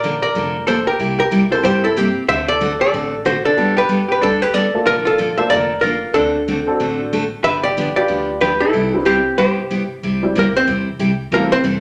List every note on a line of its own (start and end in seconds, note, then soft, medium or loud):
0.00 0.22 A#1 medium
0.00 0.14 D3 medium
0.00 0.14 F3 medium
0.00 0.20 A#4 medium
0.00 0.21 D5 medium
0.04 0.14 A#3 medium
0.04 0.15 D4 medium
0.04 0.15 A4 medium
0.22 0.64 A#4 medium
0.22 0.64 D5 medium
0.34 0.86 F1 medium
0.34 0.55 D3 medium
0.34 0.56 F3 medium
0.34 0.56 A#3 medium
0.34 0.56 D4 medium
0.34 0.56 A4 medium
0.67 0.78 D3 medium
0.67 0.78 F3 medium
0.67 0.78 A#3 medium
0.67 0.78 D4 medium
0.67 0.85 A4 medium
0.67 0.78 A4 medium
0.67 0.86 C5 medium
0.87 1.17 G4 medium
0.87 1.18 A#4 medium
0.99 1.51 C2 medium
0.99 1.20 C3 soft
0.99 1.20 G3 medium
0.99 1.20 A#3 medium
0.99 1.20 E4 medium
0.99 1.20 G4 medium
1.19 1.49 G4 medium
1.19 1.53 A#4 medium
1.31 1.42 C3 medium
1.31 1.43 G3 medium
1.31 1.43 A#3 medium
1.31 1.43 E4 medium
1.31 1.43 G4 medium
1.50 1.93 C4 medium
1.50 1.93 E4 medium
1.50 1.94 G4 medium
1.50 1.63 A4 medium
1.50 1.94 A#4 medium
1.50 1.63 C5 medium
1.63 2.15 G2 medium
1.63 1.84 C3 medium
1.63 1.84 G3 medium
1.63 1.84 A#3 medium
1.63 1.85 E4 medium
1.63 1.82 G4 medium
1.63 1.85 G4 medium
1.63 1.85 C5 loud
1.84 1.97 E4 medium
1.84 1.97 A4 medium
1.96 2.07 C3 medium
1.96 2.08 G3 medium
1.96 2.08 A#3 medium
1.96 2.23 C4 medium
1.96 2.07 E4 medium
1.96 2.08 G4 medium
1.96 2.23 G4 medium
2.28 2.80 D2 medium
2.28 2.49 D3 medium
2.28 2.49 A3 soft
2.28 2.49 C4 medium
2.28 2.50 F#4 medium
2.28 2.50 A4 soft
2.28 2.47 C5 medium
2.28 2.48 E5 loud
2.48 2.79 A4 medium
2.48 2.80 D5 medium
2.61 2.72 D3 medium
2.61 2.72 A3 medium
2.61 2.72 C4 medium
2.61 2.72 F#4 medium
2.61 2.72 A4 medium
2.81 3.22 A4 medium
2.81 3.22 D5 medium
2.93 3.45 A1 medium
2.93 3.14 D3 medium
2.93 3.14 A3 medium
2.93 3.14 C4 medium
2.93 3.14 F#4 medium
2.93 3.14 A4 medium
3.25 3.36 D3 medium
3.25 3.37 A3 medium
3.25 3.37 C4 medium
3.25 3.44 F#4 medium
3.25 3.37 F#4 medium
3.25 3.37 A4 medium
3.25 3.45 C5 medium
3.45 3.75 D4 medium
3.45 3.78 A4 medium
3.57 4.09 G1 medium
3.57 3.78 G3 medium
3.57 3.75 B3 medium
3.57 3.78 B3 medium
3.57 3.75 D4 medium
3.57 3.78 D4 medium
3.57 3.75 G4 medium
3.57 3.75 A4 medium
3.57 3.78 A4 medium
3.77 4.07 G4 medium
3.77 4.11 B4 medium
3.89 4.00 G3 medium
3.89 4.00 B3 medium
3.89 4.01 D4 medium
3.89 4.01 A4 medium
4.09 4.21 G4 medium
4.09 4.23 B4 medium
4.21 4.74 D2 medium
4.21 4.42 G3 medium
4.21 4.43 B3 medium
4.21 4.42 D4 medium
4.21 4.43 D4 medium
4.21 4.43 A4 medium
4.21 4.42 A4 medium
4.42 4.54 G4 medium
4.42 4.54 B4 medium
4.54 4.65 G3 medium
4.54 4.65 B3 medium
4.54 4.65 D4 medium
4.54 4.80 A4 medium
4.54 4.65 A4 medium
4.54 4.80 D5 medium
4.74 5.16 A#3 medium
4.74 5.17 D4 medium
4.74 5.17 F4 medium
4.74 5.17 A4 medium
4.86 5.38 A#1 medium
4.86 5.07 D3 medium
4.86 5.07 F3 soft
4.86 5.07 A#3 soft
4.86 5.07 D4 medium
4.86 5.04 F4 medium
4.86 5.07 A4 medium
4.86 5.06 A#4 loud
5.05 5.36 F4 medium
5.05 5.40 A4 medium
5.18 5.30 D3 medium
5.18 5.30 F3 medium
5.18 5.30 A#3 medium
5.18 5.30 D4 medium
5.18 5.30 A4 medium
5.38 5.50 A#3 medium
5.38 5.50 D4 medium
5.38 5.50 F4 medium
5.38 5.50 A4 medium
5.38 5.50 C5 medium
5.38 5.51 E5 medium
5.50 6.03 F1 medium
5.50 5.72 D3 medium
5.50 5.72 F3 medium
5.50 5.72 A#3 medium
5.50 5.72 D4 medium
5.50 5.72 A4 medium
5.50 5.81 A#4 medium
5.50 5.84 D5 loud
5.81 5.94 D3 medium
5.81 5.94 F3 medium
5.81 5.95 A#3 medium
5.81 5.95 D4 medium
5.81 6.13 F4 medium
5.81 5.95 A4 medium
5.81 6.14 A#4 medium
6.14 6.67 D2 medium
6.14 6.36 D3 soft
6.14 6.36 A3 soft
6.14 6.36 C4 soft
6.14 7.28 D4 medium
6.14 6.36 F#4 medium
6.14 7.28 A4 medium
6.14 6.36 A4 medium
6.48 6.59 D3 medium
6.48 6.59 A3 medium
6.48 6.59 C4 medium
6.48 6.59 F#4 medium
6.48 6.59 A4 medium
6.67 7.09 C4 medium
6.67 7.09 D4 medium
6.67 7.10 F#4 medium
6.67 7.10 A4 medium
6.80 7.32 A1 medium
6.80 7.00 D3 medium
6.80 7.00 A3 medium
6.80 7.01 C4 medium
6.80 7.01 F#4 medium
6.80 7.01 A4 medium
7.13 7.24 D3 medium
7.13 7.24 A3 medium
7.13 7.24 C4 medium
7.13 7.24 F#4 medium
7.13 7.24 A4 medium
7.44 7.96 G1 medium
7.44 7.65 D3 medium
7.44 7.65 F3 soft
7.44 7.65 B3 medium
7.44 7.65 D4 medium
7.44 7.66 G4 medium
7.44 7.63 B4 medium
7.44 7.65 E5 loud
7.63 7.95 G4 medium
7.63 7.95 D5 medium
7.77 7.88 D3 medium
7.77 7.88 F3 medium
7.77 7.88 B3 medium
7.77 7.88 D4 medium
7.77 7.88 G4 medium
7.96 8.39 D4 medium
7.96 8.39 F4 medium
7.96 8.38 G4 medium
7.96 8.39 G4 medium
7.96 8.39 B4 medium
7.96 8.41 D5 medium
8.08 8.61 D2 medium
8.08 8.29 D3 medium
8.08 8.29 F3 medium
8.08 8.30 B3 medium
8.08 8.30 D4 medium
8.08 8.30 G4 medium
8.41 8.52 D3 medium
8.41 8.52 F3 medium
8.41 8.53 B3 medium
8.41 8.53 D4 medium
8.41 8.53 G4 medium
8.41 8.60 G4 medium
8.41 8.62 B4 medium
8.60 9.03 E4 medium
8.60 9.06 A4 medium
8.73 9.26 C2 medium
8.73 8.94 C3 soft
8.73 8.94 G3 soft
8.73 8.94 B3 medium
8.73 8.94 E4 medium
8.73 8.94 G4 medium
8.94 9.05 C4 medium
8.94 9.05 E4 medium
8.94 9.05 G4 medium
8.94 9.05 B4 medium
9.05 9.17 C3 medium
9.05 9.17 G3 medium
9.05 9.17 B3 medium
9.05 9.36 C4 medium
9.05 9.17 E4 medium
9.05 9.36 G4 medium
9.05 9.17 G4 medium
9.38 9.90 G1 medium
9.38 9.59 C3 medium
9.38 9.59 G3 medium
9.38 9.59 B3 medium
9.38 9.59 E4 medium
9.38 9.59 G4 medium
9.38 9.87 G4 medium
9.38 9.87 C5 medium
9.71 9.82 C3 medium
9.71 9.82 G3 medium
9.71 9.82 B3 medium
9.71 9.82 E4 medium
9.71 9.82 G4 medium
10.03 10.34 C2 medium
10.03 10.24 C3 medium
10.03 10.24 G3 medium
10.03 10.24 C4 medium
10.03 10.24 E4 medium
10.03 10.24 G4 medium
10.23 10.34 G3 medium
10.23 10.34 C4 medium
10.23 10.34 E4 medium
10.23 10.34 G4 medium
10.23 10.34 C5 medium
10.35 10.66 D2 medium
10.35 10.46 C3 medium
10.35 10.46 G3 medium
10.35 10.56 A#3 medium
10.35 10.46 C4 medium
10.35 10.46 E4 medium
10.35 10.47 G4 medium
10.35 10.56 A#4 medium
10.57 10.68 C4 medium
10.57 10.68 C5 medium
10.67 10.99 E2 medium
10.67 10.88 C3 medium
10.67 10.88 G3 medium
10.67 10.88 C4 medium
10.67 10.88 E4 medium
10.67 10.88 G4 medium
10.99 11.31 C2 medium
10.99 11.11 C3 medium
10.99 11.11 G3 medium
10.99 11.11 C4 medium
10.99 11.11 E4 medium
10.99 11.11 G4 medium
11.31 11.63 A1 medium
11.31 11.52 E3 soft
11.31 11.52 G3 soft
11.31 11.50 A3 medium
11.31 11.52 A#3 medium
11.31 11.52 C4 medium
11.31 11.50 C4 medium
11.31 11.53 E4 medium
11.31 11.50 E4 medium
11.31 11.50 G4 medium
11.31 11.53 A4 medium
11.31 11.50 A4 medium
11.31 11.52 A#4 medium
11.52 11.64 C4 medium
11.52 11.64 C5 loud
11.64 11.80 F1 medium
11.64 11.75 E3 medium
11.64 11.75 G3 medium
11.64 11.75 C4 medium
11.64 11.75 E4 medium
11.64 11.75 A4 medium